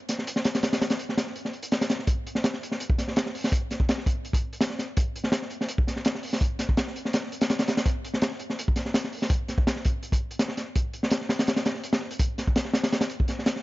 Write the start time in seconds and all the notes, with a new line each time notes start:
0.09 snare, closed hi-hat
0.19 snare
0.27 closed hi-hat
0.36 snare
0.44 snare, closed hi-hat
0.55 snare, closed hi-hat
0.63 snare, closed hi-hat
0.73 snare, closed hi-hat
0.82 snare, closed hi-hat
0.90 snare, closed hi-hat
0.99 closed hi-hat
1.09 snare
1.18 snare, closed hi-hat
1.27 snare
1.36 closed hi-hat
1.45 snare
1.53 closed hi-hat
1.63 closed hi-hat
1.72 snare, closed hi-hat
1.81 snare, closed hi-hat
1.89 snare, closed hi-hat
1.99 snare
2.07 kick, closed hi-hat
2.27 closed hi-hat
2.35 snare
2.44 snare, closed hi-hat
2.54 snare
2.63 closed hi-hat
2.72 snare
2.80 closed hi-hat
2.90 kick
2.98 snare, closed hi-hat
3.08 snare
3.16 snare, closed hi-hat
3.26 snare
3.35 open hi-hat
3.44 snare
3.52 kick, closed hi-hat
3.71 snare, closed hi-hat
3.80 kick
3.89 snare, closed hi-hat
3.98 snare
4.06 kick, closed hi-hat
4.25 closed hi-hat
4.33 kick, closed hi-hat
4.53 closed hi-hat
4.61 snare, closed hi-hat
4.70 snare
4.79 snare, closed hi-hat
4.97 kick, closed hi-hat
5.16 closed hi-hat
5.24 snare
5.32 snare, closed hi-hat
5.42 snare
5.50 closed hi-hat
5.61 snare
5.69 closed hi-hat
5.78 kick
5.87 snare, closed hi-hat
5.96 snare
6.05 snare, closed hi-hat
6.15 snare
6.23 open hi-hat
6.33 snare
6.41 kick, closed hi-hat
6.59 snare, closed hi-hat
6.69 kick
6.77 snare, closed hi-hat
6.88 snare
6.96 closed hi-hat
7.05 snare
7.13 snare, closed hi-hat
7.23 snare
7.32 closed hi-hat
7.41 snare, closed hi-hat
7.50 snare, closed hi-hat
7.59 snare, closed hi-hat
7.68 snare, closed hi-hat
7.77 snare, closed hi-hat
7.86 kick, closed hi-hat
8.05 closed hi-hat
8.14 snare
8.22 snare, closed hi-hat
8.31 snare
8.39 closed hi-hat
8.50 snare
8.59 closed hi-hat
8.68 kick
8.76 snare, closed hi-hat
8.86 snare
8.94 snare, closed hi-hat
9.04 snare
9.13 open hi-hat
9.22 snare
9.30 kick, closed hi-hat
9.48 snare, closed hi-hat
9.58 kick
9.67 snare, closed hi-hat
9.76 snare
9.85 kick, closed hi-hat
10.03 closed hi-hat
10.12 kick, closed hi-hat
10.31 closed hi-hat
10.39 snare, closed hi-hat
10.48 snare
10.57 snare, closed hi-hat
10.75 kick, closed hi-hat
10.93 closed hi-hat
11.03 snare
11.11 snare, closed hi-hat
11.21 snare
11.29 snare, closed hi-hat
11.39 snare, closed hi-hat
11.47 snare, closed hi-hat
11.56 snare, closed hi-hat
11.65 snare, closed hi-hat
11.75 snare
11.84 closed hi-hat
11.93 snare, closed hi-hat
12.01 snare
12.11 closed hi-hat
12.19 kick, closed hi-hat
12.38 snare, closed hi-hat
12.47 kick
12.56 snare, closed hi-hat
12.65 snare
12.73 snare, closed hi-hat
12.83 snare, closed hi-hat
12.92 snare, closed hi-hat
13.01 snare, closed hi-hat
13.10 closed hi-hat
13.20 kick
13.28 snare, closed hi-hat
13.39 snare
13.46 snare, closed hi-hat
13.56 snare